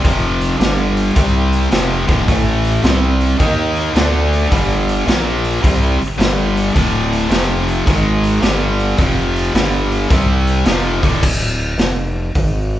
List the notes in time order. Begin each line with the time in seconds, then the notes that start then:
0.03 F1 F2 C3 F3, kick, open hi-hat
0.41 open hi-hat
0.59 G1 G2 D3 G3, snare, open hi-hat
0.97 open hi-hat
1.15 C2 C3 G3 C4, kick, open hi-hat
1.53 open hi-hat
1.71 F1 F2 C3 F3, snare, open hi-hat
2.06 D1 D2 A2 D3, kick, open hi-hat
2.27 A1 A2 E3 A3, kick, open hi-hat
2.65 open hi-hat
2.84 C2 C3 G3 C4, snare, open hi-hat
3.21 open hi-hat
3.38 D#2 D#3 A#3 D#4, kick, open hi-hat
3.76 open hi-hat
3.95 D2 D3 A3 D4, snare, open hi-hat
4.33 open hi-hat
4.50 G1 G2 D3 G3, kick, open hi-hat
4.89 open hi-hat
5.06 A#1 A#2 F3 A#3, snare, open hi-hat
5.45 open hi-hat
5.61 C2 C3 G3 C4, kick, open hi-hat
5.99 G1, muted distorted electric guitar stroke, open hi-hat
6.17 G1 G2 D3 G3, snare, open hi-hat
6.57 open hi-hat
6.73 D1 D2 A2 D3, kick, open hi-hat
7.13 open hi-hat
7.30 F1 F2 C3 F3, snare, open hi-hat
7.68 open hi-hat
7.86 G#1 G#2 D#3 G#3, kick, open hi-hat
8.24 open hi-hat
8.41 G1 G2 D3 G3, snare, open hi-hat
8.80 open hi-hat
8.98 F1 F2 C3 F3, kick, open hi-hat
9.36 open hi-hat
9.54 G1 G2 D3 G3, snare, open hi-hat
9.92 open hi-hat
10.09 C2 C3 G3 C4, kick, open hi-hat
10.47 open hi-hat
10.66 F1 F2 C3 F3, snare, open hi-hat
11.02 D1 D2 A2 D3, kick, open hi-hat
11.23 D1, kick, crash
11.78 F1, snare, open hi-hat
12.35 G#1, kick, open hi-hat